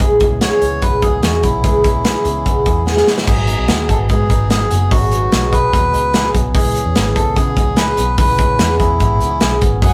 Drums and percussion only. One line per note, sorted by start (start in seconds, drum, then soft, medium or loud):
0.00 kick loud
0.20 kick loud
0.20 closed hi-hat medium
0.41 snare loud
0.41 closed hi-hat medium
0.62 closed hi-hat medium
0.82 kick medium
0.82 closed hi-hat medium
1.02 kick medium
1.02 closed hi-hat medium
1.23 snare loud
1.23 closed hi-hat medium
1.43 kick medium
1.43 closed hi-hat medium
1.64 kick loud
1.64 closed hi-hat medium
1.84 kick loud
1.84 closed hi-hat medium
2.05 snare loud
2.05 closed hi-hat medium
2.25 closed hi-hat medium
2.46 kick medium
2.46 closed hi-hat medium
2.66 kick medium
2.66 closed hi-hat medium
2.87 snare medium
2.97 snare medium
3.07 snare medium
3.18 snare medium
3.28 kick loud
3.28 crash medium
3.47 hi-hat pedal medium
3.47 open hi-hat medium
3.68 snare loud
3.68 hi-hat pedal medium
3.68 open hi-hat medium
3.89 kick medium
3.89 hi-hat pedal medium
3.89 open hi-hat medium
4.09 kick medium
4.09 hi-hat pedal medium
4.09 open hi-hat medium
4.30 kick medium
4.30 hi-hat pedal medium
4.30 open hi-hat medium
4.50 snare loud
4.50 hi-hat pedal medium
4.50 open hi-hat medium
4.71 hi-hat pedal medium
4.71 open hi-hat medium
4.91 kick loud
4.91 hi-hat pedal medium
4.91 open hi-hat medium
5.11 hi-hat pedal medium
5.11 open hi-hat medium
5.32 snare loud
5.32 hi-hat pedal medium
5.32 open hi-hat medium
5.53 kick medium
5.53 hi-hat pedal medium
5.53 open hi-hat medium
5.73 kick medium
5.73 hi-hat pedal medium
5.73 open hi-hat medium
5.94 hi-hat pedal medium
5.94 open hi-hat medium
6.14 snare loud
6.14 hi-hat pedal medium
6.14 open hi-hat medium
6.34 kick medium
6.34 hi-hat pedal medium
6.34 open hi-hat medium
6.55 kick loud
6.55 hi-hat pedal medium
6.55 open hi-hat medium
6.74 hi-hat pedal medium
6.74 open hi-hat medium
6.95 snare loud
6.95 hi-hat pedal medium
6.95 open hi-hat medium
7.16 kick medium
7.16 hi-hat pedal medium
7.16 open hi-hat medium
7.36 kick medium
7.36 hi-hat pedal medium
7.36 open hi-hat medium
7.56 kick medium
7.56 hi-hat pedal medium
7.56 open hi-hat medium
7.76 snare loud
7.76 hi-hat pedal medium
7.76 open hi-hat medium
7.97 hi-hat pedal medium
7.97 open hi-hat medium
8.18 kick loud
8.18 hi-hat pedal medium
8.18 open hi-hat medium
8.38 kick loud
8.38 hi-hat pedal medium
8.38 open hi-hat medium
8.59 snare loud
8.59 hi-hat pedal medium
8.59 open hi-hat medium
8.80 kick medium
8.80 hi-hat pedal medium
8.80 open hi-hat medium
9.00 kick medium
9.00 hi-hat pedal medium
9.00 open hi-hat medium
9.20 hi-hat pedal medium
9.20 open hi-hat medium
9.40 snare loud
9.40 hi-hat pedal medium
9.40 open hi-hat medium
9.61 kick medium
9.61 hi-hat pedal medium
9.61 open hi-hat medium
9.82 kick loud
9.82 hi-hat pedal medium
9.82 open hi-hat medium